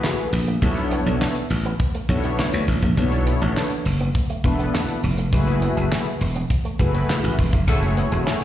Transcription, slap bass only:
0.33 0.55 A#1 loud
0.62 0.96 B1 loud
1.06 1.18 B1 loud
1.50 1.73 A1 loud
2.09 2.32 B1 medium
2.54 2.65 D2 medium
2.68 2.79 A1 medium
2.83 2.94 A#1 medium
2.97 3.31 B1 loud
3.42 3.53 A1 loud
3.86 4.08 F#1 medium
4.44 4.67 E1 medium
5.04 5.26 F1 loud
5.33 5.67 F#1 loud
5.77 5.88 F#1 medium
6.21 6.44 E1 loud
6.79 7.02 F#1 loud
7.24 7.35 A1 medium
7.39 7.50 E1 medium
7.53 7.65 F1 medium
7.68 8.02 F#1 loud
8.12 8.23 E1 loud

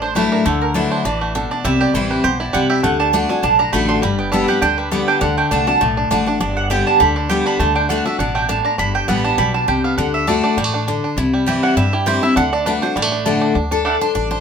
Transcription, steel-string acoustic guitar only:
0.00 0.43 A2 medium
0.15 0.44 F#3 medium
0.15 0.44 A3 medium
0.15 0.45 D4 medium
0.15 0.45 E4 medium
0.46 1.03 D3 medium
0.74 1.03 F#3 medium
0.74 1.04 A3 medium
0.74 1.04 D4 loud
0.74 1.04 E4 medium
1.05 1.34 E3 medium
1.35 1.64 B2 medium
1.65 2.22 C3 loud
1.95 2.23 E3 loud
1.95 2.23 G3 medium
1.95 2.24 C4 medium
1.95 2.24 E4 loud
2.24 2.53 B2 medium
2.54 2.83 C3 medium
2.84 3.12 D3 medium
3.13 3.29 D3 medium
3.13 3.29 A3 medium
3.13 3.29 D4 medium
3.13 3.29 F#4 loud
3.30 3.44 D4 soft
3.30 3.43 F#4 medium
3.43 4.00 A2 medium
3.73 4.01 D3 medium
3.73 4.02 A3 loud
3.73 4.02 D4 medium
3.73 4.02 F#4 loud
4.03 4.60 G2 medium
4.32 4.48 D3 medium
4.32 4.49 G3 medium
4.32 4.49 B3 medium
4.32 4.47 G4 loud
4.48 4.62 B3 soft
4.48 4.62 G4 medium
4.62 4.90 D3 medium
4.91 5.20 D3 medium
4.91 5.20 G3 medium
4.91 5.21 B3 medium
4.91 5.21 G4 loud
5.21 5.50 D3 medium
5.51 5.67 D3 medium
5.51 5.67 A3 medium
5.51 5.67 D4 loud
5.51 5.66 F#4 loud
5.67 5.81 D4 medium
5.67 5.81 F#4 medium
5.81 6.38 A2 medium
6.11 6.26 D3 medium
6.11 6.27 A3 loud
6.11 6.27 D4 medium
6.11 6.25 F#4 loud
6.26 6.41 D4 soft
6.26 6.40 F#4 medium
6.40 6.98 G2 medium
6.70 6.99 D3 medium
6.70 6.99 G3 medium
6.70 6.99 B3 loud
6.70 7.00 G4 medium
7.00 7.28 D3 medium
7.29 7.58 D3 medium
7.29 7.59 G3 medium
7.29 7.59 B3 loud
7.29 7.59 G4 medium
7.60 7.89 D3 medium
7.90 8.05 D3 medium
7.90 8.06 A3 medium
7.90 8.06 D4 medium
7.90 8.04 F#4 medium
8.05 8.20 D4 medium
8.05 8.19 F#4 medium
8.20 8.48 B2 medium
8.49 8.78 A2 medium
8.79 9.36 G2 medium
9.08 9.37 D3 medium
9.08 9.37 G3 medium
9.08 9.38 B3 medium
9.08 9.38 G4 medium
9.38 9.67 B2 medium
9.68 9.97 C3 medium
9.98 10.26 D3 medium
10.27 10.56 D3 loud
10.27 10.56 A3 medium
10.27 10.57 D4 loud
10.27 10.57 F#4 loud
10.58 10.86 A2 medium
10.88 11.16 D3 medium
11.18 11.74 C3 loud
11.46 11.75 E3 medium
11.46 11.76 G3 medium
11.46 11.76 C4 medium
11.46 11.76 E4 loud
11.77 12.34 G2 medium
12.06 12.22 E3 medium
12.06 12.22 G3 medium
12.06 12.23 C4 medium
12.06 12.22 E4 loud
12.23 12.37 C4 medium
12.23 12.36 E4 medium
12.37 12.65 D3 medium
12.66 12.82 D3 medium
12.66 12.82 A3 medium
12.66 12.83 D4 medium
12.66 12.82 F#4 loud
12.83 12.97 D4 soft
12.83 12.96 F#4 medium
12.97 13.53 A2 medium
13.26 13.54 D3 medium
13.26 13.54 A3 loud
13.26 13.55 D4 medium
13.26 13.55 F#4 medium
13.72 14.00 A4 medium
14.01 14.14 C5 medium
14.15 14.30 D5 medium
14.31 14.40 C5 medium

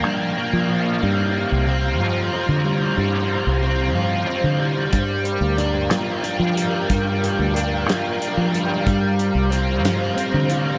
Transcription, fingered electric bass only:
0.04 0.32 G2 medium
0.53 0.96 F3 medium
1.03 1.45 G2 loud
1.52 2.00 C2 medium
2.00 2.28 G2 medium
2.49 2.91 D3 medium
2.98 3.40 G2 medium
3.47 3.96 C2 medium
3.96 4.24 G2 medium
4.44 4.87 D3 medium
4.94 5.36 G2 medium
5.41 5.90 D2 medium
5.90 6.19 G2 medium
6.39 6.83 F3 medium
6.90 7.33 G2 loud
7.39 7.86 D2 medium
7.86 8.15 G2 medium
8.37 8.80 F3 medium
8.87 9.30 G2 loud
9.35 9.84 C2 medium
9.84 10.13 G2 medium
10.34 10.77 D3 medium

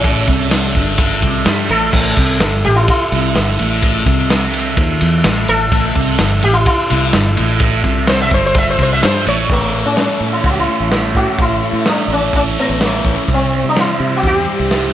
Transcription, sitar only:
0.00 0.71 C#4 loud
1.71 2.62 A4 loud
2.65 2.76 G4 loud
2.76 2.87 E4 medium
2.90 3.81 E4 loud
5.49 6.40 A4 loud
6.44 6.54 G4 loud
6.53 6.65 E4 loud
6.67 7.58 E4 loud
8.09 8.19 C5 loud
8.22 8.32 E5 medium
8.34 8.44 C5 loud
8.46 8.56 C5 loud
8.58 8.68 E5 medium
8.70 8.80 C5 medium
8.83 8.92 C5 loud
8.93 9.03 E5 loud
9.04 9.26 C5 medium
9.28 9.50 C#5 loud
9.52 9.87 A3 medium
9.85 9.96 C#4 medium
9.98 10.32 C#4 medium
10.33 10.44 E4 medium
10.46 10.51 E4 medium
10.51 10.58 F#4 medium
10.60 11.16 E4 medium
11.16 11.38 F#4 medium
11.41 11.88 E4 loud
11.88 12.12 D4 medium
12.13 12.35 C#4 medium
12.36 12.42 C#4 medium
12.59 12.83 B3 medium
12.84 13.16 A3 medium
13.34 13.64 C4 medium
13.69 13.79 D4 medium
13.80 14.14 E4 medium
14.17 14.26 F#4 medium
14.27 14.93 G4 loud

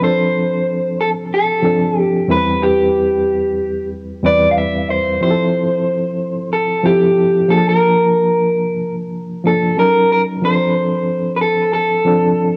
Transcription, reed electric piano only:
0.00 1.14 F3 medium
0.00 1.14 C4 medium
0.00 1.15 D4 medium
0.00 1.15 A4 medium
1.62 2.28 F3 medium
1.62 2.28 C4 medium
1.62 2.29 D4 medium
1.62 2.30 A4 medium
2.28 3.41 E2 medium
2.28 3.42 G3 medium
2.28 3.42 C4 medium
2.28 3.43 E4 medium
2.28 2.37 A#4 medium
2.37 3.46 B4 medium
4.23 5.09 E2 medium
4.23 5.09 G3 medium
4.23 5.09 C4 medium
4.23 5.10 E4 medium
4.23 5.10 B4 medium
5.21 6.34 F3 medium
5.21 6.35 C4 medium
5.21 6.35 E4 medium
5.21 5.30 G4 medium
5.30 6.39 A4 medium
6.83 7.47 F3 medium
6.83 7.49 C4 medium
6.83 7.50 E4 medium
6.83 7.51 A4 medium
7.48 8.62 F3 medium
7.48 8.63 A#3 medium
7.48 8.63 D4 medium
7.48 7.58 G#4 medium
7.57 8.67 A5 medium
9.44 9.77 F3 medium
9.44 9.78 A#3 medium
9.44 9.78 D4 medium
9.44 9.79 A4 medium
9.77 10.34 F#3 medium
9.77 10.34 C#4 medium
9.77 10.35 D#4 medium
9.77 10.36 A#4 medium
10.42 11.56 F3 medium
10.42 11.56 C4 medium
10.42 11.57 D4 medium
10.42 11.57 A4 medium
12.05 12.57 F3 medium
12.05 12.57 C4 medium
12.05 12.57 D4 medium
12.05 12.57 A4 medium

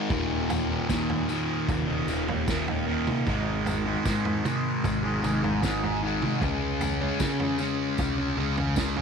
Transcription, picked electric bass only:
0.10 0.78 D#1 medium
0.89 1.23 D#2 medium
1.68 2.02 D#1 medium
2.07 3.09 D#1 medium
3.27 3.94 G#1 medium
4.05 4.39 G#2 medium
4.84 5.18 G#1 medium
5.23 6.24 G#1 medium
6.41 7.09 C#2 medium
7.20 7.54 C#3 medium
7.98 8.32 C#2 medium
8.37 9.02 C#2 medium

